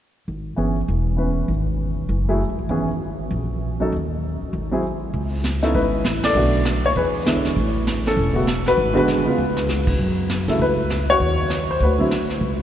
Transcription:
0.28 upright bass G#1
0.56 upright bass G1, grand piano E3 B3 C#4 G#4
0.88 upright bass E1
1.17 grand piano E3 B3 C#4 B4
1.48 upright bass G#1
2.09 upright bass F#1
2.29 grand piano F#3 A3 E4 G#4
2.49 upright bass G#1
2.59 upright bass A1
2.69 upright bass G#1, grand piano E3 B3 C#4 G#4
3.31 upright bass A#1
3.80 grand piano F#3 C#4 D#4 A4
3.92 upright bass D#2
4.42 muted upright bass stroke
4.53 upright bass G#1
4.71 grand piano F#3 C4 E4 G#4
5.14 upright bass C#2, brush sweep, kick
5.44 snare, hi-hat pedal
5.62 grand piano B3 C#4 D#4 E4 A4, snare
5.74 upright bass G#1, grand piano E4 B4, brush sweep, kick
6.04 upright bass A1, snare, hi-hat pedal
6.23 grand piano A4 D5, snare, ride
6.35 upright bass B1, grand piano D3 A3 B3 F#4, brush sweep
6.65 snare, hi-hat pedal
6.84 upright bass D2, grand piano C#5
6.96 upright bass E2, grand piano G#4 B4, brush sweep, kick
7.25 grand piano D3 G#3 B3 E4, snare, hi-hat pedal
7.36 upright bass G#2
7.45 upright bass E2, snare
7.56 upright bass A1, brush sweep, kick
7.87 snare, hi-hat pedal
8.06 grand piano C#4 A4, snare
8.17 upright bass E1, brush sweep, kick
8.34 grand piano C#3 A3 B3 F#4
8.47 snare, hi-hat pedal
8.66 grand piano F#4 B4, snare
8.77 upright bass G#1, brush sweep, kick
8.94 grand piano D3 G#3 B3 F#4 B4
9.08 snare, hi-hat pedal
9.25 grand piano C#3 G#3 B3 F4, muted upright bass stroke
9.38 upright bass C#2
9.57 snare
9.68 snare, hi-hat pedal
9.87 kick, crash
9.99 upright bass F#2, brush sweep, kick
10.29 snare, hi-hat pedal
10.48 upright bass C#3, grand piano C#3 F#3 A3 E4 A4, snare
10.59 upright bass C#2, grand piano E4 B4, brush sweep, kick
10.90 snare, hi-hat pedal
11.10 grand piano F#4 C#5
11.20 upright bass D#2, brush sweep, kick
11.50 snare, hi-hat pedal
11.71 grand piano C5
11.80 upright bass D2, grand piano B4, brush sweep, kick
11.85 grand piano F#4
11.98 grand piano D3 F#3 C4 E4
12.11 snare, hi-hat pedal
12.30 snare
12.41 upright bass C#2, brush sweep, kick

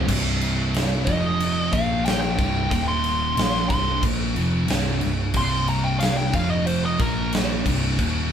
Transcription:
0.08 picked electric bass C1, distorted electric guitar C2 G2 C3, kick, crash
0.41 crash
0.74 snare, crash
1.05 picked electric bass F1, distorted electric guitar F2 C3 F3, lead electric guitar D#5, kick, crash
1.40 crash
1.72 picked electric bass A#1, distorted electric guitar A#2 F3 A#3, lead electric guitar F5, kick, crash
2.05 lead electric guitar G5, snare, crash
2.21 lead electric guitar G5
2.37 picked electric bass C1, distorted electric guitar C2 G2 C3, kick, crash
2.70 picked electric bass D#1, distorted electric guitar D#2 A#2 D#3, kick, crash
2.88 lead electric guitar C6
3.04 crash
3.36 picked electric bass A#1, distorted electric guitar A#2 F3 A#3, snare, crash
3.69 picked electric bass C1, distorted electric guitar C2 G2 C3, lead electric guitar C6, kick, crash
4.01 picked electric bass A#1, distorted electric guitar A#2 F3 A#3, kick, crash
4.36 picked electric bass F1, distorted electric guitar F2 C3 F3, crash
4.67 picked electric bass C1, distorted electric guitar C2 G2 C3, snare, crash
5.01 picked electric bass C1, distorted electric guitar C2 G2, crash
5.34 picked electric bass C1, distorted electric guitar C2 G2 C3, lead electric guitar C6, kick, crash
5.68 lead electric guitar A#5, crash
5.84 lead electric guitar G5
6.00 lead electric guitar F5, snare, crash
6.17 lead electric guitar G5
6.33 picked electric bass F1, distorted electric guitar F2 C3 F3, lead electric guitar F5, kick, crash
6.50 lead electric guitar D#5
6.67 lead electric guitar C5, crash
6.86 lead electric guitar D#5
6.99 picked electric bass A#1, distorted electric guitar A#2 F3 A#3, lead electric guitar A#4, kick, crash
7.33 snare, crash
7.66 picked electric bass C1, distorted electric guitar C2 G2 C3, kick, crash
7.99 picked electric bass D#1, distorted electric guitar D#2 A#2 D#3, kick, crash

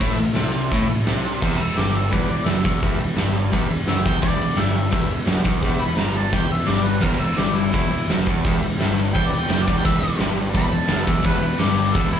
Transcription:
0.00 picked electric bass A1, overdriven electric guitar A2, transistor combo organ E4 A4 E5, kick, ride
0.16 picked electric bass A1, overdriven electric guitar A2, ride
0.33 picked electric bass C2, overdriven electric guitar C3, transistor combo organ E4 A4 E5, snare, ride
0.54 ride
0.68 picked electric bass A1, transistor combo organ E4 A4 E5, kick, ride
0.73 overdriven electric guitar A2
0.89 picked electric bass A1, overdriven electric guitar A2, ride
1.04 picked electric bass C2, transistor combo organ E4 A4 E5, snare, ride
1.08 overdriven electric guitar C3
1.25 ride
1.42 picked electric bass E1, overdriven electric guitar E2, transistor combo organ G4 B4 E5, kick, crash
1.60 picked electric bass E1, overdriven electric guitar E2, harmonica A4, ride
1.75 picked electric bass G1, overdriven electric guitar G2, transistor combo organ G4 B4 E5, harmonica G4, snare, ride
1.95 harmonica A4, ride
2.11 picked electric bass E1, overdriven electric guitar E2, transistor combo organ G4 B4 D5, harmonica B4, kick, ride
2.29 picked electric bass E1, overdriven electric guitar E2, harmonica D5, ride
2.46 picked electric bass F#1, overdriven electric guitar F#2, transistor combo organ G4 B4 E5, harmonica E5, snare, ride
2.64 picked electric bass E1, overdriven electric guitar E2, harmonica E5, kick, ride
2.82 picked electric bass E1, overdriven electric guitar E2, transistor combo organ G4 B4 E5, kick, ride
2.98 picked electric bass E1, overdriven electric guitar E2, ride
3.15 picked electric bass G1, overdriven electric guitar G2, transistor combo organ G4 B4 E5, snare, ride
3.36 ride
3.51 picked electric bass E1, overdriven electric guitar E2, transistor combo organ G4 B4 E5, kick, ride
3.70 picked electric bass E1, overdriven electric guitar E2, ride
3.87 picked electric bass F#1, overdriven electric guitar F#2, transistor combo organ G4 B4 E5, harmonica E5, snare, ride
4.06 picked electric bass E1, overdriven electric guitar E2, harmonica G5, kick, ride
4.21 picked electric bass E1, overdriven electric guitar E2, transistor combo organ G4 B4 E5, harmonica D5, kick, ride
4.39 picked electric bass E1, overdriven electric guitar E2, ride
4.56 picked electric bass G1, overdriven electric guitar G2, transistor combo organ G4 B4 E5, harmonica E5, snare, ride
4.75 ride
4.90 picked electric bass E1, overdriven electric guitar E2, transistor combo organ G4 B4 E5, harmonica E5, kick, ride
5.09 picked electric bass E1, overdriven electric guitar E2, ride
5.26 picked electric bass F#1, overdriven electric guitar F#2, transistor combo organ G4 B4 E5, snare, ride
5.44 picked electric bass E1, overdriven electric guitar E2, kick, ride
5.62 picked electric bass E1, overdriven electric guitar E2, transistor combo organ G4 B4 E5, kick, ride
5.79 picked electric bass E1, overdriven electric guitar E2, harmonica B5, ride
5.97 picked electric bass G1, overdriven electric guitar G2, transistor combo organ G4 B4 E5, harmonica A#5, snare, ride
6.15 harmonica A5, ride
6.32 picked electric bass E1, overdriven electric guitar E2, transistor combo organ G4 B4 E5, harmonica G5, kick, ride
6.49 picked electric bass E1, overdriven electric guitar E2, harmonica E5, ride
6.66 picked electric bass G1, overdriven electric guitar G2, transistor combo organ G4 B4 E5, harmonica D5, snare, ride
6.85 harmonica B4, ride
7.00 picked electric bass E1, overdriven electric guitar E2, transistor combo organ G4 B4 E5, harmonica A#4, kick, crash
7.19 picked electric bass E1, overdriven electric guitar E2, harmonica A4, ride
7.36 picked electric bass G1, overdriven electric guitar G2, harmonica G4, transistor combo organ G4 B4 E5, snare, ride
7.56 harmonica E4, ride
7.74 picked electric bass E1, overdriven electric guitar E2, harmonica E4, transistor combo organ G4 B4 E5, kick, ride
7.91 picked electric bass E1, overdriven electric guitar E2, ride
8.08 picked electric bass F#1, overdriven electric guitar F#2, transistor combo organ G4 B4 E5, snare, ride
8.26 picked electric bass E1, overdriven electric guitar E2, kick, ride
8.44 picked electric bass E1, overdriven electric guitar E2, transistor combo organ G4 B4 E5, kick, ride
8.62 picked electric bass E1, overdriven electric guitar E2, ride
8.78 picked electric bass G1, overdriven electric guitar G2, transistor combo organ G4 B4 E5, snare, ride
8.98 ride
9.12 picked electric bass E1, overdriven electric guitar E2, transistor combo organ G4 B4 E5, harmonica G5, kick, ride
9.27 harmonica D5
9.32 picked electric bass E1, overdriven electric guitar E2, ride
9.38 harmonica G5
9.47 picked electric bass F#1, overdriven electric guitar F#2, transistor combo organ G4 B4 E5, snare, ride
9.52 harmonica G5
9.63 harmonica D5
9.68 picked electric bass E1, overdriven electric guitar E2, kick, ride
9.76 harmonica G5
9.81 picked electric bass E1, overdriven electric guitar E2, transistor combo organ G4 B4 E5, harmonica E5, kick, ride
10.02 picked electric bass E1, overdriven electric guitar E2, ride
10.16 picked electric bass G1, transistor combo organ G4 B4 E5, snare, ride
10.21 overdriven electric guitar G2
10.37 ride
10.53 picked electric bass E1, overdriven electric guitar E2, transistor combo organ G4 B4 E5, harmonica B5, kick, ride
10.71 picked electric bass E1, overdriven electric guitar E2, harmonica A5, ride
10.88 picked electric bass F#1, overdriven electric guitar F#2, transistor combo organ G4 B4 E5, snare, ride
11.07 picked electric bass E1, overdriven electric guitar E2, harmonica E5, kick, ride
11.22 picked electric bass E1, overdriven electric guitar E2, transistor combo organ G4 B4 E5, harmonica B4, kick, ride
11.41 picked electric bass E1, overdriven electric guitar E2, ride
11.59 picked electric bass G1, overdriven electric guitar G2, transistor combo organ G4 B4 E5, harmonica G4, snare, ride
11.78 ride
11.93 picked electric bass E1, overdriven electric guitar E2, transistor combo organ G4 B4 E5, harmonica A4, kick, ride
12.11 picked electric bass E1, overdriven electric guitar E2, harmonica E4, ride

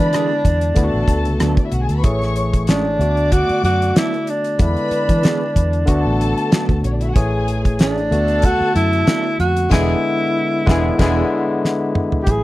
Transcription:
Already playing: tine electric piano D3 G#3 B3 E4, fingered electric bass E3, tenor saxophone D4, string section B4 B5
0.12 clean electric guitar E3 B3 D4 G#4, cross-stick, closed hi-hat
0.45 fingered electric bass E2, kick, closed hi-hat
0.61 closed hi-hat
0.74 fingered electric bass D2, tine electric piano D3 A3 B3 E4, string section A4 A5, kick, closed hi-hat
0.84 tine electric piano F#4
0.94 fingered electric bass A1
1.08 fingered electric bass D2, kick, closed hi-hat
1.25 fingered electric bass C#2, closed hi-hat
1.39 fingered electric bass D2, clean electric guitar F#3 B3 D4 A4, cross-stick, closed hi-hat
1.57 string section D4 D5, kick, closed hi-hat
1.65 string section E4 E5
1.72 fingered electric bass B1, string section F#4 F#5, closed hi-hat
1.81 string section G#4 G#5
1.89 fingered electric bass D2, string section A4 A5, closed hi-hat
1.96 string section B4 B5
2.03 fingered electric bass A1, tine electric piano E3 A3 G#4 C#5, string section C#5 C#6, kick, closed hi-hat
2.22 snare, closed hi-hat
2.36 closed hi-hat
2.53 kick, closed hi-hat
2.67 clean electric guitar G#3 C#4 E4 G#4, tenor saxophone D4, snare, closed hi-hat
2.99 fingered electric bass D2, tine electric piano D3 A3 B3 F#4, string section D5 D6, closed hi-hat
3.17 closed hi-hat
3.32 tenor saxophone F#4, kick, closed hi-hat
3.49 muted fingered electric bass stroke, closed hi-hat
3.64 fingered electric bass F#2, tenor saxophone F#4, closed hi-hat
3.82 closed hi-hat
3.95 clean electric guitar F#3 B3 D4 A4, tenor saxophone E4, snare, closed hi-hat
4.14 closed hi-hat
4.27 tenor saxophone D4, closed hi-hat
4.44 closed hi-hat
4.59 fingered electric bass E2, tine electric piano D3 G#3 B3 E4, tenor saxophone D4, string section B4 B5, kick, closed hi-hat
4.77 closed hi-hat
4.91 muted fingered electric bass stroke, closed hi-hat
5.09 fingered electric bass E3, kick, closed hi-hat
5.22 clean electric guitar E3 B3 D4 G#4, snare, closed hi-hat
5.56 fingered electric bass E2, kick, closed hi-hat
5.73 closed hi-hat
5.85 fingered electric bass D2, tine electric piano D3 A3 B3 F#4, string section A4 A5, kick, closed hi-hat
6.05 fingered electric bass A1
6.21 closed hi-hat
6.38 closed hi-hat
6.51 clean electric guitar F#3 B3 D4 A4, snare, closed hi-hat
6.69 fingered electric bass D2, kick, closed hi-hat
6.83 fingered electric bass A#1, string section C#4 C#5, closed hi-hat
6.92 string section D4 D5
7.00 string section E4 E5, closed hi-hat
7.08 string section F#4 F#5
7.15 fingered electric bass A1, tine electric piano E3 A3 G#4 C#5, string section G#4 G#5, kick, closed hi-hat
7.48 closed hi-hat
7.65 kick, closed hi-hat
7.79 clean electric guitar E3 A3 C#4 G#4, tenor saxophone D4, snare, closed hi-hat
7.98 closed hi-hat
8.11 fingered electric bass D2, tine electric piano D3 A3 B3 F#4, string section A4 A5, closed hi-hat
8.28 closed hi-hat
8.42 tenor saxophone F#4, kick, closed hi-hat
8.61 muted fingered electric bass stroke
8.75 fingered electric bass F#2, tenor saxophone E4, closed hi-hat
8.93 closed hi-hat
9.07 clean electric guitar F#3 B3 D4 A4, snare, closed hi-hat
9.40 fingered electric bass F2, tenor saxophone F#4, closed hi-hat
9.57 closed hi-hat
9.70 fingered electric bass E1, tine electric piano D3 G#3 B3 E4, clean electric guitar E3 B3 D4 G#4, tenor saxophone E4, string section G#4 G#5, kick, snare, crash
10.66 fingered electric bass E1, tine electric piano D3 G#3 B3 E4, clean electric guitar E3 B3 D4 G#4, string section G#4 G#5, kick, snare
10.98 fingered electric bass E1, tine electric piano D3 G#3 B3 E4, clean electric guitar E3 B3 D4 G#4, string section G#4 G#5, kick, snare, crash
11.65 snare
11.95 mid tom
12.12 floor tom
12.23 tine electric piano E3 F#3, tenor saxophone G4, closed hi-hat
12.27 fingered electric bass A1, tine electric piano A3 E4, tenor saxophone G#4, kick

